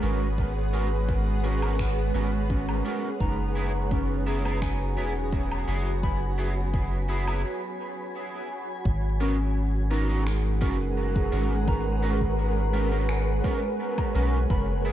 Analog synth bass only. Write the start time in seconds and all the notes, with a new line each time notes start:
0.03 G#1
2.15 G#1
3.21 F#1
4.97 E1
5.68 F#1
8.85 G#1
10.62 F#1
11.33 G#1
14.15 B1
14.50 F#1